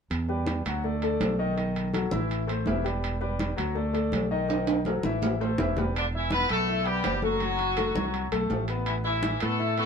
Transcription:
0.10 E2, high conga, high timbale
0.28 G3 G4 B4, high conga
0.46 high conga, high timbale, low timbale
0.65 D2 F#3 F#4 F#5, high conga, high timbale
0.84 A3 A4 D5, high conga
1.02 A3 A4 D5, high conga, high timbale
1.20 B1, high conga, high timbale, low timbale
1.39 D#3 D#4 D#5
1.57 D#3 D#4 D#5, high conga, high timbale
1.76 high conga, high timbale
1.93 F#3 F#4 A4, high conga, high timbale, low timbale
2.11 A1 E3 E4 E5, high conga
2.30 high conga, high timbale
2.47 A3 A4 C5, high conga, high timbale
2.66 E1 E3 E4 E5, high conga, low timbale
2.84 G3 G4 B4, high conga, high timbale
3.03 high conga, high timbale
3.21 G3 G4 B4, high conga
3.39 high conga, high timbale, low timbale
3.56 D2 F#3 F#4 F#5, high conga, high timbale
3.75 A3 A4 D5, high conga
3.93 A3 A4 D5, high conga, high timbale
4.12 B1, high conga, high timbale, low timbale
4.31 D#3 D#4 D#5
4.48 D#3 D#4 D#5, high conga, high timbale
4.67 high conga, high timbale
4.85 F#3 F#4 A4, high conga, low timbale
5.03 A1 E3 E4 E5, high conga
5.22 high conga, low timbale
5.40 A3 A4 C5, low timbale
5.58 E1 E3 E4 E5, low conga, low timbale
5.77 G3 G4 B4, low conga, low timbale
5.95 D3 D4, high conga, high timbale
6.13 E3 E4 E5, high conga
6.30 B3 B4, high conga, high timbale, low timbale
6.49 B1 A3 B3 A4 B4, high conga, high timbale
6.67 E4 E5, high conga
6.86 G3 B3 G4 B4, high conga, high timbale
7.04 F#1, high conga, high timbale, low timbale
7.22 F#3 A3 F#4 A4, high conga
7.40 F#3 F#4, high conga, high timbale
7.59 high conga, high timbale
7.77 A3 A4, high conga, high timbale, low timbale
7.95 C2 F#3 F#4, high conga
8.14 high conga, high timbale
8.32 B1 A3 A4, high conga, high timbale
8.50 A1, high conga, low timbale
8.68 B3 B4, high conga, high timbale
8.86 E3 E4, high conga, high timbale
9.04 E3 E4 E5, high conga
9.23 high conga, high timbale, low timbale
9.40 A2 A3 B3 A4 B4, high conga, high timbale
9.59 E4 E5, high conga
9.78 A3 B3 A4 B4, high conga, high timbale

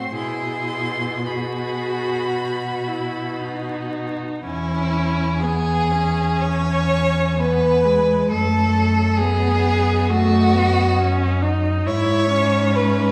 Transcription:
Already playing: A2 C4 F#4 C6
0.14 B2 E4 G#4 C6
1.25 F#4 G#4 B5
2.31 F#4
2.87 E4
3.40 D#4
4.44 E2 C#4 E4 G#5
5.40 B3 G#4
5.91 C#4
6.41 C#5
7.39 B3 B4
7.85 G#3
8.30 F#2 A3 A4 D#5
9.18 B3 G#4
10.10 A3 F#4
10.54 B3
10.99 C#4
11.42 D#4
11.86 G#2 E4 C#5 E5
12.32 C#4
12.76 B4 E5

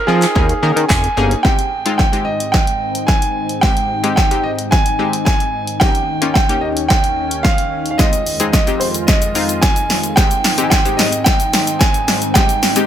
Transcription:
0.07 F3 C4 D#4 F4 G#4 A#4
0.22 clap, closed hi-hat
0.35 D#2 A#3 C#4 D#4 G#4, kick
0.49 closed hi-hat
0.63 D#3 A#3 C#4 D#4 A#4
0.76 D#3, closed hi-hat
0.89 F1 G#5, kick, clap
1.04 closed hi-hat
1.17 G1 A#3 C#4 D#4 G#4
1.31 closed hi-hat
1.43 G#2 D#3 G#3 C4 D#4 G4 G5, kick, snare
1.59 closed hi-hat
1.85 G#3 C4 D#4 F4, closed hi-hat
1.98 G5, kick, snare
2.12 G#3 C4 D#4 G4, closed hi-hat
2.25 D#5
2.40 closed hi-hat
2.52 G5, kick, snare
2.67 closed hi-hat
2.95 closed hi-hat
3.07 G#5, kick, snare
3.22 closed hi-hat
3.49 closed hi-hat
3.61 G#3 C4 D#4 G4 G5, kick, snare
3.77 closed hi-hat
4.03 G#3 C4 D#4 G4, closed hi-hat
4.16 G5, kick, snare
4.31 G#3 C4 D#4 G4, closed hi-hat
4.44 D#5
4.59 closed hi-hat
4.71 G#5, kick, snare
4.86 closed hi-hat
4.99 G#3 C4 D#4 G4
5.13 closed hi-hat
5.25 G#5, kick, snare
5.40 closed hi-hat
5.67 closed hi-hat
5.80 D#2 A#3 C#4 D#4 G4 G5, kick, snare
5.95 closed hi-hat
6.22 A#3 C#4 D#4 F4, closed hi-hat
6.34 G5, kick, snare
6.49 A#3 C#4 D#4 G4, closed hi-hat
6.61 D#5
6.77 closed hi-hat
6.88 G5, kick, snare
7.04 closed hi-hat
7.31 closed hi-hat
7.43 F5, kick, snare
7.58 closed hi-hat
7.86 closed hi-hat
7.91 F5
7.98 F2 G#3 C4 D#4 F4 D#5, kick, snare, shaker
8.13 closed hi-hat, shaker
8.26 open hi-hat, shaker
8.40 G#3 C4 D#4 G#4, closed hi-hat, shaker
8.52 D#5, kick, snare, shaker
8.67 G#3 C4 D#4 G4, closed hi-hat, shaker
8.80 C5, open hi-hat, shaker
8.94 closed hi-hat, shaker
9.07 D#5, kick, snare, shaker
9.22 closed hi-hat, shaker
9.35 G#3 C4 D#4 F4, open hi-hat, shaker
9.49 closed hi-hat, shaker
9.61 G#5, kick, snare, shaker
9.76 closed hi-hat, shaker
9.90 snare, open hi-hat, shaker
10.03 closed hi-hat, shaker
10.16 G#2 G#3 C4 D#4 G4 G5, kick, snare, shaker
10.31 closed hi-hat, shaker
10.44 snare, open hi-hat, shaker
10.58 G#3 C4 D#4 G4, closed hi-hat, shaker
10.63 G#5
10.70 G5, kick, snare, shaker
10.85 G#3 C4 D#4 G4, closed hi-hat, shaker
10.97 D#5, snare, open hi-hat, shaker
11.12 closed hi-hat, shaker
11.24 G5, kick, snare, shaker
11.40 closed hi-hat, shaker
11.53 snare, open hi-hat, shaker
11.67 closed hi-hat, shaker
11.79 G#5, kick, snare, shaker
11.94 closed hi-hat, shaker
12.08 snare, open hi-hat, shaker
12.22 closed hi-hat, shaker
12.34 G#3 C4 D#4 G4 G5, kick, snare, shaker
12.49 closed hi-hat, shaker
12.63 snare, open hi-hat, shaker
12.76 G#3 C4 D#4 G4, closed hi-hat, shaker

